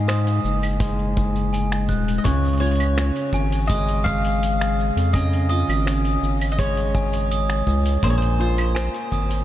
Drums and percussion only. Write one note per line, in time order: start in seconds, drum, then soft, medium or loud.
0.09 finger snap medium
0.09 open hi-hat medium
0.09 shaker soft
0.27 open hi-hat soft
0.27 shaker soft
0.45 shaker medium
0.63 open hi-hat soft
0.63 claves medium
0.63 shaker soft
0.80 kick loud
0.80 open hi-hat medium
0.80 shaker soft
0.99 open hi-hat soft
1.17 kick medium
1.17 shaker medium
1.36 open hi-hat soft
1.36 shaker soft
1.54 open hi-hat medium
1.54 shaker soft
1.72 finger snap medium
1.72 open hi-hat soft
1.72 shaker soft
1.89 kick medium
1.89 shaker medium
2.08 open hi-hat soft
2.08 shaker soft
2.25 kick loud
2.25 open hi-hat medium
2.25 shaker soft
2.44 open hi-hat soft
2.44 shaker soft
2.49 open hi-hat soft
2.53 open hi-hat soft
2.58 open hi-hat soft
2.62 open hi-hat soft
2.62 shaker medium
2.67 open hi-hat soft
2.71 open hi-hat soft
2.75 open hi-hat soft
2.80 open hi-hat soft
2.80 claves medium
2.80 shaker soft
2.98 finger snap medium
2.98 open hi-hat medium
2.98 shaker soft
3.16 open hi-hat soft
3.16 shaker soft
3.33 kick medium
3.33 shaker medium
3.52 open hi-hat soft
3.52 shaker soft
3.59 shaker soft
3.65 shaker soft
3.70 kick loud
3.70 open hi-hat medium
3.70 shaker soft
3.77 shaker soft
3.83 shaker soft
3.89 open hi-hat soft
4.06 kick medium
4.06 shaker medium
4.25 open hi-hat soft
4.25 shaker soft
4.43 open hi-hat medium
4.43 shaker soft
4.61 finger snap medium
4.61 open hi-hat soft
4.61 shaker soft
4.80 shaker medium
4.97 open hi-hat soft
4.97 shaker soft
5.14 kick loud
5.14 open hi-hat medium
5.14 shaker soft
5.33 open hi-hat soft
5.33 shaker soft
5.51 shaker medium
5.70 open hi-hat soft
5.70 claves medium
5.70 shaker soft
5.87 finger snap medium
5.87 open hi-hat medium
5.87 shaker soft
6.05 open hi-hat soft
6.05 shaker soft
6.23 shaker medium
6.41 open hi-hat soft
6.41 claves medium
6.41 shaker soft
6.59 kick loud
6.59 open hi-hat medium
6.59 shaker soft
6.77 open hi-hat soft
6.95 kick medium
6.95 shaker medium
7.13 open hi-hat soft
7.13 shaker soft
7.32 open hi-hat medium
7.32 shaker soft
7.50 finger snap medium
7.50 open hi-hat soft
7.50 shaker soft
7.67 kick medium
7.67 shaker medium
7.86 open hi-hat soft
7.86 shaker soft
8.03 kick loud
8.03 open hi-hat medium
8.03 shaker soft
8.22 open hi-hat soft
8.22 shaker soft
8.40 shaker medium
8.58 open hi-hat soft
8.58 claves medium
8.58 shaker soft
8.76 finger snap medium
8.76 open hi-hat medium
8.76 shaker soft
8.94 open hi-hat soft
8.94 shaker soft
9.12 kick medium
9.12 shaker medium
9.31 open hi-hat soft
9.31 shaker soft